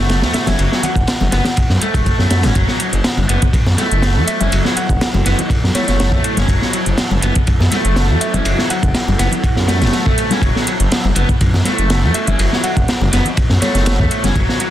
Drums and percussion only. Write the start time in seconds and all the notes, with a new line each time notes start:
0.09 snare, closed hi-hat, ride
0.22 snare, ride
0.33 snare, closed hi-hat, ride
0.46 snare, closed hi-hat, ride, high conga, low conga
0.59 closed hi-hat, ride
0.72 snare
0.83 closed hi-hat, ride, low conga
0.96 kick, closed hi-hat
1.07 snare, closed hi-hat, ride
1.21 high conga, low conga
1.32 snare, closed hi-hat, ride
1.45 snare, closed hi-hat, ride, low conga
1.57 kick, closed hi-hat, ride
1.70 snare
1.81 closed hi-hat, ride, high conga
1.94 kick, closed hi-hat, ride
2.06 kick, closed hi-hat, ride
2.19 snare
2.30 snare, closed hi-hat, ride
2.43 snare, closed hi-hat, ride, high conga
2.55 kick, closed hi-hat, ride
2.68 snare
2.80 closed hi-hat, ride
2.93 closed hi-hat
3.04 snare, closed hi-hat, ride
3.18 high conga
3.29 closed hi-hat, ride
3.42 kick, closed hi-hat
3.53 kick, closed hi-hat, ride
3.66 snare, low conga
3.78 snare, closed hi-hat, ride, high conga
3.91 closed hi-hat
4.02 snare, closed hi-hat, ride
4.28 closed hi-hat, ride
4.41 closed hi-hat, high conga, low conga
4.52 closed hi-hat, ride
4.65 snare
4.77 closed hi-hat, ride
4.89 kick, closed hi-hat
5.01 snare, closed hi-hat, ride
5.14 high conga, low conga
5.26 snare, closed hi-hat, ride
5.39 closed hi-hat, low conga
5.50 kick, closed hi-hat, ride
5.64 snare
5.75 snare, closed hi-hat, ride, high conga
5.88 snare, closed hi-hat
6.00 snare, closed hi-hat, ride
6.12 kick
6.24 closed hi-hat, ride
6.37 snare, closed hi-hat, high conga
6.48 kick, closed hi-hat, ride
6.62 snare
6.73 closed hi-hat, ride
6.86 closed hi-hat
6.98 snare, closed hi-hat, ride
7.11 high conga
7.22 closed hi-hat, ride
7.35 kick, closed hi-hat
7.47 kick, closed hi-hat, ride
7.61 snare, low conga
7.71 snare, closed hi-hat, ride, high conga
7.85 closed hi-hat
7.96 snare, closed hi-hat, ride
8.21 closed hi-hat, ride
8.34 closed hi-hat, high conga, low conga
8.45 closed hi-hat, ride
8.58 snare
8.70 closed hi-hat, ride
8.83 kick, closed hi-hat
8.94 snare, closed hi-hat, ride
9.08 high conga, low conga
9.19 snare, closed hi-hat, ride
9.32 closed hi-hat, low conga
9.44 kick, closed hi-hat, ride
9.56 snare
9.68 snare, closed hi-hat, ride, high conga
9.82 snare, closed hi-hat, ride
9.87 snare, ride
9.93 snare, closed hi-hat, ride
10.06 kick
10.18 closed hi-hat, ride
10.31 snare, closed hi-hat, high conga
10.42 kick, closed hi-hat, ride
10.56 snare
10.67 closed hi-hat, ride
10.80 closed hi-hat
10.92 snare, closed hi-hat, ride
11.05 high conga
11.15 closed hi-hat, ride
11.29 kick, closed hi-hat
11.41 kick, closed hi-hat, ride
11.54 snare, low conga
11.65 snare, closed hi-hat, ride, high conga
11.78 closed hi-hat
11.90 snare, closed hi-hat, ride
12.14 closed hi-hat, ride
12.27 closed hi-hat, high conga, low conga
12.39 closed hi-hat, ride
12.53 snare
12.64 closed hi-hat, ride
12.77 kick, closed hi-hat
12.88 snare, closed hi-hat, ride
13.01 high conga, low conga
13.13 snare, closed hi-hat, ride
13.25 closed hi-hat, low conga
13.37 kick, closed hi-hat, ride
13.49 snare
13.62 snare, closed hi-hat, ride, high conga
13.75 snare, closed hi-hat
13.86 snare, closed hi-hat, ride
14.00 kick
14.11 closed hi-hat, ride
14.24 snare, closed hi-hat, high conga
14.35 kick, closed hi-hat, ride
14.49 snare
14.60 closed hi-hat, ride